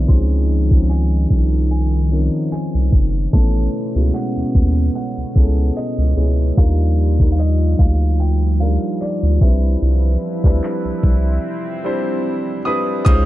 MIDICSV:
0, 0, Header, 1, 6, 480
1, 0, Start_track
1, 0, Tempo, 810811
1, 52, Time_signature, 4, 2, 24, 8
1, 7847, End_track
2, 0, Start_track
2, 0, Title_t, "Grand piano"
2, 0, Program_c, 0, 0
2, 0, Note_on_c, 0, 83, 109
2, 50, Note_on_c, 0, 84, 107
2, 66, Note_off_c, 0, 83, 0
2, 507, Note_off_c, 0, 84, 0
2, 529, Note_on_c, 0, 80, 98
2, 1003, Note_off_c, 0, 80, 0
2, 1012, Note_on_c, 0, 80, 100
2, 1468, Note_off_c, 0, 80, 0
2, 1492, Note_on_c, 0, 80, 100
2, 1972, Note_on_c, 0, 81, 107
2, 1986, Note_off_c, 0, 80, 0
2, 2451, Note_on_c, 0, 78, 95
2, 2467, Note_off_c, 0, 81, 0
2, 2908, Note_off_c, 0, 78, 0
2, 2933, Note_on_c, 0, 78, 99
2, 3414, Note_on_c, 0, 75, 93
2, 3427, Note_off_c, 0, 78, 0
2, 3869, Note_off_c, 0, 75, 0
2, 3894, Note_on_c, 0, 77, 95
2, 4311, Note_off_c, 0, 77, 0
2, 4333, Note_on_c, 0, 77, 65
2, 4372, Note_off_c, 0, 77, 0
2, 4377, Note_on_c, 0, 75, 87
2, 4611, Note_on_c, 0, 77, 91
2, 4621, Note_off_c, 0, 75, 0
2, 4854, Note_on_c, 0, 79, 94
2, 4859, Note_off_c, 0, 77, 0
2, 5076, Note_off_c, 0, 79, 0
2, 5093, Note_on_c, 0, 77, 81
2, 5335, Note_on_c, 0, 74, 89
2, 5340, Note_off_c, 0, 77, 0
2, 5557, Note_off_c, 0, 74, 0
2, 5572, Note_on_c, 0, 76, 79
2, 7228, Note_off_c, 0, 76, 0
2, 7489, Note_on_c, 0, 87, 86
2, 7715, Note_off_c, 0, 87, 0
2, 7724, Note_on_c, 0, 87, 97
2, 7847, Note_off_c, 0, 87, 0
2, 7847, End_track
3, 0, Start_track
3, 0, Title_t, "Grand piano"
3, 0, Program_c, 1, 0
3, 0, Control_c, 1, 64, 127
3, 0, Note_on_c, 1, 52, 67
3, 0, Note_on_c, 1, 59, 63
3, 0, Note_on_c, 1, 60, 68
3, 0, Note_on_c, 1, 62, 66
3, 0, Note_on_c, 1, 64, 79
3, 0, Note_on_c, 1, 67, 96
3, 48, Note_on_c, 1, 53, 92
3, 51, Note_off_c, 1, 60, 0
3, 51, Note_on_c, 1, 60, 87
3, 54, Note_on_c, 1, 61, 82
3, 57, Note_on_c, 1, 63, 81
3, 60, Note_off_c, 1, 59, 0
3, 60, Control_c, 1, 64, 0
3, 60, Note_on_c, 1, 68, 103
3, 63, Note_off_c, 1, 62, 0
3, 63, Note_off_c, 1, 67, 0
3, 65, Note_off_c, 1, 64, 0
3, 66, Note_off_c, 1, 52, 0
3, 175, Control_c, 1, 64, 127
3, 381, Note_off_c, 1, 53, 0
3, 383, Note_off_c, 1, 60, 0
3, 384, Note_off_c, 1, 61, 0
3, 386, Note_off_c, 1, 63, 0
3, 387, Note_off_c, 1, 68, 0
3, 419, Note_on_c, 1, 53, 65
3, 422, Note_on_c, 1, 60, 61
3, 424, Note_on_c, 1, 61, 61
3, 427, Note_on_c, 1, 63, 64
3, 430, Note_on_c, 1, 68, 72
3, 1175, Note_off_c, 1, 53, 0
3, 1176, Note_off_c, 1, 60, 0
3, 1177, Note_off_c, 1, 61, 0
3, 1178, Note_off_c, 1, 63, 0
3, 1180, Note_off_c, 1, 68, 0
3, 1249, Note_on_c, 1, 53, 70
3, 1252, Note_on_c, 1, 60, 61
3, 1255, Note_on_c, 1, 61, 64
3, 1258, Note_on_c, 1, 63, 62
3, 1261, Note_on_c, 1, 70, 75
3, 1905, Note_off_c, 1, 53, 0
3, 1907, Note_off_c, 1, 60, 0
3, 1908, Note_off_c, 1, 61, 0
3, 1910, Note_off_c, 1, 63, 0
3, 1911, Note_off_c, 1, 70, 0
3, 1971, Note_on_c, 1, 57, 98
3, 1973, Note_on_c, 1, 59, 85
3, 1976, Note_on_c, 1, 61, 82
3, 1979, Control_c, 1, 64, 0
3, 1979, Note_on_c, 1, 64, 86
3, 1982, Note_on_c, 1, 69, 103
3, 2075, Control_c, 1, 64, 127
3, 2303, Note_off_c, 1, 57, 0
3, 2304, Note_off_c, 1, 59, 0
3, 2305, Note_off_c, 1, 61, 0
3, 2307, Note_off_c, 1, 64, 0
3, 2308, Note_off_c, 1, 69, 0
3, 2339, Note_on_c, 1, 56, 68
3, 2342, Note_on_c, 1, 59, 61
3, 2345, Note_on_c, 1, 61, 58
3, 2347, Note_on_c, 1, 64, 59
3, 2350, Note_on_c, 1, 66, 75
3, 3095, Note_off_c, 1, 56, 0
3, 3096, Note_off_c, 1, 59, 0
3, 3097, Note_off_c, 1, 61, 0
3, 3099, Note_off_c, 1, 64, 0
3, 3100, Note_off_c, 1, 66, 0
3, 3168, Note_on_c, 1, 68, 72
3, 3171, Note_on_c, 1, 59, 65
3, 3174, Note_on_c, 1, 61, 66
3, 3177, Note_on_c, 1, 64, 64
3, 3180, Note_on_c, 1, 69, 83
3, 3607, Note_off_c, 1, 68, 0
3, 3608, Note_off_c, 1, 59, 0
3, 3610, Note_off_c, 1, 61, 0
3, 3611, Note_off_c, 1, 64, 0
3, 3613, Note_off_c, 1, 69, 0
3, 3650, Note_on_c, 1, 56, 74
3, 3654, Note_on_c, 1, 59, 65
3, 3656, Note_on_c, 1, 61, 68
3, 3659, Note_on_c, 1, 64, 69
3, 3661, Note_on_c, 1, 68, 82
3, 3869, Note_off_c, 1, 56, 0
3, 3871, Note_off_c, 1, 59, 0
3, 3873, Note_off_c, 1, 61, 0
3, 3874, Note_off_c, 1, 64, 0
3, 3875, Note_off_c, 1, 68, 0
3, 3889, Note_on_c, 1, 55, 92
3, 3892, Note_on_c, 1, 62, 85
3, 3894, Note_on_c, 1, 63, 82
3, 3898, Note_on_c, 1, 65, 84
3, 3899, Control_c, 1, 64, 0
3, 3900, Note_on_c, 1, 70, 107
3, 4019, Control_c, 1, 64, 127
3, 4222, Note_off_c, 1, 55, 0
3, 4223, Note_off_c, 1, 62, 0
3, 4224, Note_off_c, 1, 63, 0
3, 4227, Note_off_c, 1, 65, 0
3, 4227, Note_off_c, 1, 70, 0
3, 4259, Note_on_c, 1, 55, 67
3, 4262, Note_on_c, 1, 58, 61
3, 4263, Note_on_c, 1, 63, 62
3, 4267, Note_on_c, 1, 65, 61
3, 4270, Note_on_c, 1, 70, 76
3, 5015, Note_off_c, 1, 55, 0
3, 5016, Note_off_c, 1, 58, 0
3, 5017, Note_off_c, 1, 63, 0
3, 5019, Note_off_c, 1, 65, 0
3, 5020, Note_off_c, 1, 70, 0
3, 5089, Note_on_c, 1, 53, 58
3, 5092, Note_on_c, 1, 62, 68
3, 5095, Note_on_c, 1, 63, 70
3, 5098, Note_on_c, 1, 65, 67
3, 5100, Note_on_c, 1, 70, 80
3, 5128, Note_on_c, 1, 55, 73
3, 5132, Note_off_c, 1, 53, 0
3, 5560, Note_off_c, 1, 55, 0
3, 5566, Note_off_c, 1, 62, 0
3, 5569, Note_on_c, 1, 55, 75
3, 5572, Note_on_c, 1, 60, 69
3, 5574, Note_off_c, 1, 63, 0
3, 5575, Note_off_c, 1, 65, 0
3, 5575, Note_on_c, 1, 62, 72
3, 5576, Note_off_c, 1, 70, 0
3, 5578, Note_on_c, 1, 64, 71
3, 5580, Control_c, 1, 64, 0
3, 5580, Note_on_c, 1, 71, 82
3, 5668, Control_c, 1, 64, 127
3, 6116, Note_off_c, 1, 55, 0
3, 6118, Note_off_c, 1, 60, 0
3, 6119, Note_off_c, 1, 62, 0
3, 6121, Note_off_c, 1, 64, 0
3, 6122, Note_off_c, 1, 71, 0
3, 6180, Note_on_c, 1, 55, 82
3, 6182, Note_on_c, 1, 60, 73
3, 6185, Note_on_c, 1, 62, 73
3, 6188, Note_on_c, 1, 64, 74
3, 6191, Note_on_c, 1, 71, 91
3, 6935, Note_off_c, 1, 55, 0
3, 6936, Note_off_c, 1, 60, 0
3, 6937, Note_off_c, 1, 62, 0
3, 6939, Note_off_c, 1, 64, 0
3, 6940, Note_off_c, 1, 71, 0
3, 7010, Note_on_c, 1, 55, 89
3, 7013, Note_on_c, 1, 60, 76
3, 7015, Note_on_c, 1, 62, 80
3, 7018, Note_on_c, 1, 64, 78
3, 7022, Note_on_c, 1, 72, 95
3, 7447, Note_off_c, 1, 55, 0
3, 7449, Note_off_c, 1, 60, 0
3, 7450, Note_off_c, 1, 62, 0
3, 7452, Note_off_c, 1, 64, 0
3, 7453, Note_off_c, 1, 72, 0
3, 7490, Note_on_c, 1, 55, 87
3, 7493, Note_on_c, 1, 60, 81
3, 7496, Note_on_c, 1, 62, 80
3, 7498, Note_on_c, 1, 64, 77
3, 7501, Note_on_c, 1, 71, 96
3, 7709, Note_off_c, 1, 55, 0
3, 7711, Note_off_c, 1, 60, 0
3, 7712, Note_off_c, 1, 62, 0
3, 7713, Note_off_c, 1, 64, 0
3, 7715, Note_off_c, 1, 71, 0
3, 7730, Note_on_c, 1, 56, 96
3, 7733, Note_on_c, 1, 61, 85
3, 7735, Note_on_c, 1, 63, 90
3, 7738, Note_on_c, 1, 65, 88
3, 7739, Control_c, 1, 64, 0
3, 7740, Note_on_c, 1, 72, 106
3, 7834, Control_c, 1, 64, 127
3, 7847, Note_off_c, 1, 56, 0
3, 7847, Note_off_c, 1, 61, 0
3, 7847, Note_off_c, 1, 63, 0
3, 7847, Note_off_c, 1, 65, 0
3, 7847, Note_off_c, 1, 72, 0
3, 7847, End_track
4, 0, Start_track
4, 0, Title_t, "Analog synth pad"
4, 0, Program_c, 2, 89
4, 52, Note_on_c, 2, 53, 70
4, 52, Note_on_c, 2, 63, 86
4, 53, Note_on_c, 2, 51, 80
4, 1953, Note_off_c, 2, 51, 0
4, 1953, Note_off_c, 2, 53, 0
4, 1953, Note_off_c, 2, 63, 0
4, 1972, Note_on_c, 2, 47, 81
4, 1972, Note_on_c, 2, 59, 73
4, 1973, Note_on_c, 2, 61, 90
4, 3873, Note_off_c, 2, 47, 0
4, 3873, Note_off_c, 2, 59, 0
4, 3874, Note_off_c, 2, 61, 0
4, 3890, Note_on_c, 2, 53, 75
4, 3890, Note_on_c, 2, 55, 70
4, 3892, Note_on_c, 2, 65, 91
4, 5554, Note_off_c, 2, 55, 0
4, 5555, Note_off_c, 2, 65, 0
4, 5570, Note_on_c, 2, 71, 69
4, 5572, Note_on_c, 2, 64, 85
4, 6521, Note_off_c, 2, 71, 0
4, 6532, Note_on_c, 2, 60, 69
4, 7707, Note_off_c, 2, 53, 0
4, 7711, Note_off_c, 2, 64, 0
4, 7720, Note_off_c, 2, 60, 0
4, 7847, End_track
5, 0, Start_track
5, 0, Title_t, "Analog synth bass"
5, 0, Program_c, 3, 38
5, 53, Note_on_c, 3, 37, 112
5, 749, Note_off_c, 3, 37, 0
5, 774, Note_on_c, 3, 36, 94
5, 1359, Note_off_c, 3, 36, 0
5, 1626, Note_on_c, 3, 36, 87
5, 1720, Note_off_c, 3, 36, 0
5, 1732, Note_on_c, 3, 30, 94
5, 1940, Note_off_c, 3, 30, 0
5, 1973, Note_on_c, 3, 33, 112
5, 2181, Note_off_c, 3, 33, 0
5, 2343, Note_on_c, 3, 37, 92
5, 2438, Note_off_c, 3, 37, 0
5, 2586, Note_on_c, 3, 39, 44
5, 2629, Note_off_c, 3, 39, 0
5, 2693, Note_on_c, 3, 39, 89
5, 2900, Note_off_c, 3, 39, 0
5, 3064, Note_on_c, 3, 37, 49
5, 3108, Note_off_c, 3, 37, 0
5, 3173, Note_on_c, 3, 37, 94
5, 3380, Note_off_c, 3, 37, 0
5, 3543, Note_on_c, 3, 37, 93
5, 3638, Note_off_c, 3, 37, 0
5, 3654, Note_on_c, 3, 37, 81
5, 3861, Note_off_c, 3, 37, 0
5, 3895, Note_on_c, 3, 39, 112
5, 4590, Note_off_c, 3, 39, 0
5, 4613, Note_on_c, 3, 38, 99
5, 5199, Note_off_c, 3, 38, 0
5, 5464, Note_on_c, 3, 38, 101
5, 5559, Note_off_c, 3, 38, 0
5, 5573, Note_on_c, 3, 36, 103
5, 5781, Note_off_c, 3, 36, 0
5, 5814, Note_on_c, 3, 36, 114
5, 6021, Note_off_c, 3, 36, 0
5, 6182, Note_on_c, 3, 38, 85
5, 6277, Note_off_c, 3, 38, 0
5, 6423, Note_on_c, 3, 36, 45
5, 6467, Note_off_c, 3, 36, 0
5, 6533, Note_on_c, 3, 36, 90
5, 6741, Note_off_c, 3, 36, 0
5, 7734, Note_on_c, 3, 37, 107
5, 7847, Note_off_c, 3, 37, 0
5, 7847, End_track
6, 0, Start_track
6, 0, Title_t, "Drums"
6, 52, Note_on_c, 9, 36, 118
6, 52, Note_on_c, 9, 42, 70
6, 111, Note_off_c, 9, 36, 0
6, 112, Note_off_c, 9, 42, 0
6, 421, Note_on_c, 9, 36, 91
6, 480, Note_off_c, 9, 36, 0
6, 529, Note_on_c, 9, 42, 78
6, 536, Note_on_c, 9, 39, 117
6, 588, Note_off_c, 9, 42, 0
6, 596, Note_off_c, 9, 39, 0
6, 772, Note_on_c, 9, 36, 89
6, 774, Note_on_c, 9, 42, 69
6, 831, Note_off_c, 9, 36, 0
6, 833, Note_off_c, 9, 42, 0
6, 1250, Note_on_c, 9, 42, 64
6, 1310, Note_off_c, 9, 42, 0
6, 1490, Note_on_c, 9, 42, 70
6, 1497, Note_on_c, 9, 39, 113
6, 1549, Note_off_c, 9, 42, 0
6, 1556, Note_off_c, 9, 39, 0
6, 1731, Note_on_c, 9, 36, 92
6, 1790, Note_off_c, 9, 36, 0
6, 1972, Note_on_c, 9, 36, 113
6, 1973, Note_on_c, 9, 42, 68
6, 2031, Note_off_c, 9, 36, 0
6, 2032, Note_off_c, 9, 42, 0
6, 2458, Note_on_c, 9, 39, 118
6, 2517, Note_off_c, 9, 39, 0
6, 2692, Note_on_c, 9, 36, 88
6, 2693, Note_on_c, 9, 42, 68
6, 2751, Note_off_c, 9, 36, 0
6, 2753, Note_off_c, 9, 42, 0
6, 2937, Note_on_c, 9, 42, 74
6, 2996, Note_off_c, 9, 42, 0
6, 3171, Note_on_c, 9, 36, 88
6, 3171, Note_on_c, 9, 42, 66
6, 3231, Note_off_c, 9, 36, 0
6, 3231, Note_off_c, 9, 42, 0
6, 3419, Note_on_c, 9, 39, 114
6, 3478, Note_off_c, 9, 39, 0
6, 3892, Note_on_c, 9, 36, 115
6, 3892, Note_on_c, 9, 42, 68
6, 3952, Note_off_c, 9, 36, 0
6, 3952, Note_off_c, 9, 42, 0
6, 4261, Note_on_c, 9, 36, 91
6, 4320, Note_off_c, 9, 36, 0
6, 4369, Note_on_c, 9, 42, 78
6, 4377, Note_on_c, 9, 39, 114
6, 4429, Note_off_c, 9, 42, 0
6, 4436, Note_off_c, 9, 39, 0
6, 4612, Note_on_c, 9, 36, 88
6, 4615, Note_on_c, 9, 42, 69
6, 4671, Note_off_c, 9, 36, 0
6, 4674, Note_off_c, 9, 42, 0
6, 4856, Note_on_c, 9, 42, 76
6, 4915, Note_off_c, 9, 42, 0
6, 5091, Note_on_c, 9, 42, 67
6, 5151, Note_off_c, 9, 42, 0
6, 5331, Note_on_c, 9, 42, 72
6, 5338, Note_on_c, 9, 39, 106
6, 5390, Note_off_c, 9, 42, 0
6, 5397, Note_off_c, 9, 39, 0
6, 5572, Note_on_c, 9, 36, 102
6, 5631, Note_off_c, 9, 36, 0
6, 5813, Note_on_c, 9, 42, 68
6, 5872, Note_off_c, 9, 42, 0
6, 6180, Note_on_c, 9, 36, 87
6, 6240, Note_off_c, 9, 36, 0
6, 6288, Note_on_c, 9, 42, 80
6, 6296, Note_on_c, 9, 39, 117
6, 6347, Note_off_c, 9, 42, 0
6, 6355, Note_off_c, 9, 39, 0
6, 6532, Note_on_c, 9, 36, 90
6, 6533, Note_on_c, 9, 42, 72
6, 6591, Note_off_c, 9, 36, 0
6, 6592, Note_off_c, 9, 42, 0
6, 7732, Note_on_c, 9, 36, 122
6, 7733, Note_on_c, 9, 42, 72
6, 7791, Note_off_c, 9, 36, 0
6, 7792, Note_off_c, 9, 42, 0
6, 7847, End_track
0, 0, End_of_file